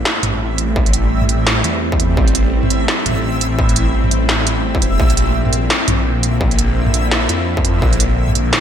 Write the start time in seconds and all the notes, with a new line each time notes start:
Already playing: G3 A3 C4 E4 E5
0.05 snare
0.23 A1, closed hi-hat, mid tom
0.58 closed hi-hat
0.76 kick
0.86 closed hi-hat
0.93 A1, closed hi-hat
1.22 mid tom
1.29 closed hi-hat
1.47 snare
1.64 E2, closed hi-hat
1.92 kick
2.00 closed hi-hat
2.17 A1, kick
2.28 closed hi-hat
2.35 closed hi-hat
2.63 mid tom
2.70 closed hi-hat
2.88 snare
3.06 A1, closed hi-hat, mid tom
3.08 mid tom
3.11 mid tom
3.14 mid tom
3.41 closed hi-hat
3.59 kick
3.69 closed hi-hat
3.76 A1, closed hi-hat
4.04 mid tom
4.11 closed hi-hat
4.29 snare
4.47 closed hi-hat
4.75 kick
4.82 E1, closed hi-hat
5.00 A#1 D3 A#3, kick
5.10 closed hi-hat
5.17 closed hi-hat
5.45 mid tom
5.53 closed hi-hat
5.70 snare
5.88 A#1, closed hi-hat, mid tom
6.23 closed hi-hat
6.41 kick
6.51 closed hi-hat
6.59 A#1, closed hi-hat
6.86 mid tom
6.94 closed hi-hat
7.11 snare
7.29 F2, closed hi-hat
7.57 kick
7.65 closed hi-hat
7.82 A#1 D4, kick
7.93 closed hi-hat
8.00 closed hi-hat
8.28 mid tom
8.35 closed hi-hat
8.53 snare